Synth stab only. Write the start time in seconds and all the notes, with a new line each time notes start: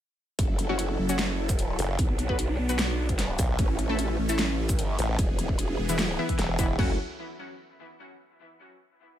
0.69 F#3 C#4 F#4
1.09 F#3 C#4 F#4
2.29 B3 F#4 B4
2.69 B3 F#4 B4
3.89 A3 E4 A4
4.29 A3 E4 A4
5.89 E3 B3 E4
6.19 E3 B3 E4
6.59 E3 B3 E4
6.79 F#3 C#4 F#4